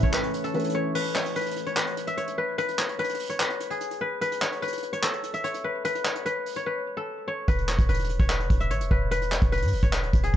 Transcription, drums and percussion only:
0.03 kick loud
0.03 closed hi-hat medium
0.13 clap loud
0.13 closed hi-hat medium
0.24 closed hi-hat medium
0.34 closed hi-hat medium
0.44 closed hi-hat medium
0.54 closed hi-hat soft
0.59 closed hi-hat medium
0.64 closed hi-hat medium
0.69 closed hi-hat medium
0.95 crash loud
1.05 closed hi-hat medium
1.15 clap loud
1.15 closed hi-hat medium
1.26 closed hi-hat medium
1.36 closed hi-hat medium
1.41 closed hi-hat medium
1.46 closed hi-hat medium
1.51 closed hi-hat medium
1.56 closed hi-hat medium
1.66 closed hi-hat medium
1.77 clap loud
1.77 closed hi-hat medium
1.87 closed hi-hat medium
1.97 closed hi-hat medium
2.07 closed hi-hat medium
2.17 closed hi-hat medium
2.28 closed hi-hat medium
2.58 closed hi-hat medium
2.69 closed hi-hat medium
2.79 clap loud
2.79 closed hi-hat medium
2.89 closed hi-hat medium
2.99 closed hi-hat medium
3.04 closed hi-hat medium
3.09 closed hi-hat medium
3.14 closed hi-hat medium
3.19 open hi-hat medium
3.30 closed hi-hat medium
3.40 clap loud
3.40 closed hi-hat medium
3.50 closed hi-hat medium
3.60 closed hi-hat medium
3.71 closed hi-hat medium
3.81 closed hi-hat medium
3.91 closed hi-hat medium
4.22 closed hi-hat medium
4.32 closed hi-hat medium
4.42 clap loud
4.42 closed hi-hat medium
4.52 closed hi-hat medium
4.62 closed hi-hat medium
4.68 closed hi-hat medium
4.73 closed hi-hat medium
4.78 closed hi-hat medium
4.83 closed hi-hat medium
4.93 closed hi-hat medium
5.03 clap loud
5.03 closed hi-hat medium
5.13 closed hi-hat medium
5.24 closed hi-hat medium
5.34 closed hi-hat medium
5.44 closed hi-hat medium
5.54 closed hi-hat medium
5.85 closed hi-hat medium
5.95 closed hi-hat medium
6.05 clap loud
6.05 closed hi-hat medium
6.15 closed hi-hat medium
6.26 closed hi-hat medium
6.46 open hi-hat medium
6.56 closed hi-hat medium
7.48 kick loud
7.48 closed hi-hat medium
7.58 closed hi-hat medium
7.69 clap loud
7.69 closed hi-hat medium
7.79 kick loud
7.79 closed hi-hat medium
7.89 closed hi-hat medium
7.94 closed hi-hat medium
7.99 closed hi-hat medium
8.04 closed hi-hat medium
8.09 closed hi-hat medium
8.20 kick medium
8.20 closed hi-hat medium
8.30 clap loud
8.30 closed hi-hat medium
8.40 closed hi-hat medium
8.50 kick medium
8.50 closed hi-hat medium
8.60 closed hi-hat medium
8.71 closed hi-hat medium
8.81 closed hi-hat medium
8.91 kick medium
9.11 closed hi-hat medium
9.22 closed hi-hat medium
9.32 clap loud
9.32 closed hi-hat medium
9.42 kick loud
9.42 closed hi-hat medium
9.52 closed hi-hat medium
9.57 closed hi-hat medium
9.62 closed hi-hat medium
9.68 closed hi-hat medium
9.73 open hi-hat medium
9.83 kick loud
9.83 closed hi-hat medium
9.93 clap loud
9.93 closed hi-hat medium
10.03 closed hi-hat medium
10.13 kick loud
10.13 closed hi-hat medium
10.24 closed hi-hat medium

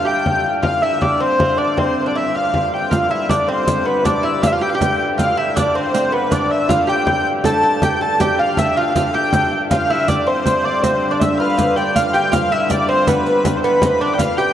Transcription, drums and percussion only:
0.26 frame drum medium
0.63 frame drum medium
0.83 frame drum soft
1.02 frame drum medium
1.21 frame drum soft
1.40 frame drum loud
1.59 frame drum soft
1.78 frame drum medium
2.35 frame drum soft
2.54 frame drum medium
2.92 riq medium
2.92 frame drum medium
3.11 frame drum soft
3.29 riq medium
3.29 frame drum medium
3.48 frame drum soft
3.67 riq medium
3.67 frame drum loud
3.86 frame drum soft
4.05 riq medium
4.05 frame drum medium
4.25 frame drum soft
4.43 riq medium
4.43 frame drum medium
4.62 frame drum soft
4.81 riq medium
4.81 frame drum medium
5.00 frame drum soft
5.19 riq medium
5.19 frame drum medium
5.38 frame drum soft
5.57 riq medium
5.57 frame drum medium
5.76 frame drum soft
5.95 riq medium
6.13 frame drum soft
6.32 riq medium
6.32 frame drum medium
6.69 riq medium
6.69 frame drum loud
6.89 riq soft
7.07 frame drum loud
7.26 frame drum soft
7.44 riq medium
7.44 frame drum medium
7.63 frame drum soft
7.82 riq medium
7.82 frame drum loud
8.01 frame drum soft
8.20 riq medium
8.20 frame drum medium
8.39 frame drum soft
8.57 riq medium
8.57 frame drum medium
8.77 frame drum soft
8.95 riq medium
8.95 frame drum medium
9.14 frame drum soft
9.33 riq medium
9.33 frame drum medium
9.52 frame drum soft
9.71 riq medium
9.71 frame drum medium
9.90 frame drum soft
10.08 riq medium
10.08 frame drum medium
10.27 frame drum soft
10.46 riq medium
10.46 frame drum medium
10.65 frame drum soft
10.84 riq medium
10.84 frame drum medium
11.02 frame drum soft
11.21 riq medium
11.21 frame drum medium
11.58 riq medium
11.58 frame drum medium
11.77 riq soft
11.96 riq medium
11.96 frame drum medium
12.15 riq soft
12.15 frame drum soft
12.33 riq medium
12.33 frame drum medium
12.51 riq soft
12.51 frame drum soft
12.70 riq medium
12.70 frame drum medium
12.89 frame drum soft
13.07 riq medium
13.07 frame drum loud
13.26 riq soft
13.26 frame drum soft
13.45 riq medium
13.45 frame drum loud
13.64 riq soft
13.64 frame drum soft
13.82 riq medium
13.82 frame drum loud
14.19 riq medium
14.19 frame drum medium
14.38 riq soft
14.38 frame drum soft

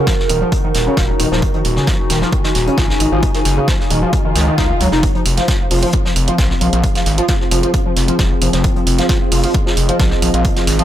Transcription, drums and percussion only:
0.07 kick loud
0.07 snare loud
0.07 closed hi-hat medium
0.19 snare soft
0.29 closed hi-hat medium
0.29 open hi-hat loud
0.52 kick loud
0.52 closed hi-hat loud
0.75 snare medium
0.75 closed hi-hat medium
0.75 open hi-hat loud
0.97 kick loud
0.97 snare loud
0.97 closed hi-hat medium
1.20 closed hi-hat medium
1.20 open hi-hat loud
1.32 snare medium
1.42 kick loud
1.42 closed hi-hat medium
1.54 closed hi-hat soft
1.65 closed hi-hat medium
1.65 open hi-hat loud
1.76 snare soft
1.87 kick loud
1.87 snare loud
1.87 closed hi-hat medium
2.10 snare loud
2.10 closed hi-hat medium
2.10 open hi-hat loud
2.21 snare soft
2.33 kick loud
2.33 closed hi-hat medium
2.44 snare loud
2.44 closed hi-hat medium
2.55 snare soft
2.55 open hi-hat loud
2.67 closed hi-hat medium
2.78 kick loud
2.78 snare loud
2.78 closed hi-hat medium
2.90 snare medium
3.00 closed hi-hat medium
3.00 open hi-hat loud
3.23 kick loud
3.23 closed hi-hat medium
3.35 snare soft
3.35 open hi-hat medium
3.45 snare soft
3.45 closed hi-hat medium
3.45 open hi-hat loud
3.68 kick loud
3.68 snare loud
3.68 closed hi-hat medium
3.80 snare soft
3.90 closed hi-hat medium
3.90 open hi-hat loud
4.13 kick loud
4.13 closed hi-hat medium
4.36 snare medium
4.36 closed hi-hat medium
4.36 open hi-hat loud
4.58 kick loud
4.58 snare loud
4.58 closed hi-hat medium
4.81 closed hi-hat medium
4.81 open hi-hat loud
4.92 snare soft
5.03 kick loud
5.03 closed hi-hat medium
5.15 closed hi-hat soft
5.25 closed hi-hat medium
5.25 open hi-hat loud
5.37 snare soft
5.37 closed hi-hat medium
5.48 kick loud
5.48 snare loud
5.48 closed hi-hat medium
5.71 open hi-hat loud
5.71 open hi-hat medium
5.83 closed hi-hat medium
5.93 kick loud
5.93 closed hi-hat medium
6.05 snare medium
6.16 closed hi-hat medium
6.16 open hi-hat loud
6.28 closed hi-hat medium
6.38 kick loud
6.38 snare loud
6.38 closed hi-hat medium
6.50 snare medium
6.61 open hi-hat loud
6.73 closed hi-hat medium
6.84 kick loud
6.84 closed hi-hat medium
6.95 snare soft
6.95 open hi-hat medium
7.06 snare soft
7.06 closed hi-hat medium
7.06 open hi-hat loud
7.18 closed hi-hat medium
7.28 kick loud
7.28 snare loud
7.28 closed hi-hat medium
7.41 snare soft
7.51 closed hi-hat medium
7.51 open hi-hat loud
7.63 closed hi-hat medium
7.73 kick loud
7.73 closed hi-hat medium
7.96 snare medium
7.96 closed hi-hat medium
7.96 open hi-hat loud
8.08 closed hi-hat medium
8.19 kick loud
8.19 snare loud
8.19 closed hi-hat medium
8.41 closed hi-hat medium
8.41 open hi-hat loud
8.53 snare soft
8.53 closed hi-hat medium
8.64 kick loud
8.64 closed hi-hat medium
8.76 closed hi-hat soft
8.87 closed hi-hat medium
8.87 open hi-hat loud
8.99 snare soft
8.99 closed hi-hat medium
9.09 kick loud
9.09 snare loud
9.09 closed hi-hat loud
9.09 closed hi-hat medium
9.32 open hi-hat loud
9.32 open hi-hat medium
9.44 closed hi-hat medium
9.54 kick loud
9.54 closed hi-hat medium
9.67 snare medium
9.77 closed hi-hat medium
9.77 open hi-hat loud
9.89 closed hi-hat medium
9.99 kick loud
9.99 snare loud
9.99 closed hi-hat medium
10.11 snare medium
10.22 closed hi-hat medium
10.22 open hi-hat loud
10.34 closed hi-hat medium
10.44 kick loud
10.44 closed hi-hat medium
10.56 snare soft
10.56 open hi-hat medium
10.67 snare soft
10.67 closed hi-hat medium
10.67 open hi-hat loud
10.79 closed hi-hat medium

